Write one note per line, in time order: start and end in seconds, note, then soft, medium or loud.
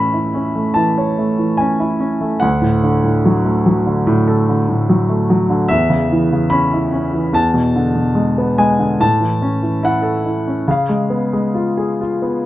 0.00 2.39 A2 soft
0.00 0.76 E3 soft
0.00 0.54 A3 soft
0.00 0.33 C#4 soft
0.00 2.46 E5 medium
0.00 0.72 B5 medium
0.13 1.77 E4 soft
0.34 1.59 C#4 soft
0.55 1.17 A3 soft
0.74 1.37 E3 medium
0.74 1.61 A5 medium
0.98 2.40 C#5 soft
1.18 2.20 A3 soft
1.39 2.40 E3 soft
1.57 1.99 C#4 soft
1.57 2.45 G#5 medium
1.80 2.41 E4 soft
2.00 2.41 C#4 soft
2.21 2.42 A3 soft
2.40 5.66 D2 medium
2.40 5.24 F#5 medium
2.62 3.02 A2 soft
2.83 3.85 D3 soft
3.03 4.05 A2 soft
3.25 3.64 F#3 soft
3.45 5.05 A3 soft
3.66 4.88 F#3 soft
3.87 4.47 D3 soft
4.07 4.68 A2 medium
4.28 5.67 A4 soft
4.49 5.48 D3 soft
4.69 5.68 A2 soft
4.89 5.29 F#3 soft
5.09 5.69 A3 soft
5.30 5.70 F#3 soft
5.50 5.70 D3 soft
5.68 7.30 E2 medium
5.68 6.47 E5 medium
5.90 6.31 C#3 soft
6.12 7.12 E3 medium
6.32 7.31 C#3 soft
6.50 6.91 C#4 medium
6.50 7.35 B5 medium
6.73 7.32 E4 soft
6.92 7.33 C#4 soft
7.13 7.33 E3 soft
7.33 8.96 E2 medium
7.33 8.63 A5 medium
7.54 7.94 B2 soft
7.76 8.78 D3 soft
7.95 8.97 B2 soft
8.15 8.57 G#3 soft
8.38 8.98 B3 soft
8.58 8.99 G#3 soft
8.58 9.01 G#5 medium
8.79 8.99 D3 soft
9.00 10.63 A2 medium
9.00 9.86 A5 medium
9.20 9.61 E3 soft
9.42 10.46 C#4 soft
9.63 10.64 E3 soft
9.83 10.23 E4 medium
9.83 10.64 F#5 medium
10.02 10.64 A4 soft
10.25 10.66 E4 soft
10.47 10.67 C#4 soft
10.68 12.41 C#3 medium
10.68 11.99 F5 medium
10.89 11.32 G#3 soft
11.10 12.21 B3 soft
11.33 12.41 G#3 soft
11.55 12.00 F4 soft
11.77 12.42 G#4 soft
12.01 12.43 F4 soft
12.22 12.43 B3 soft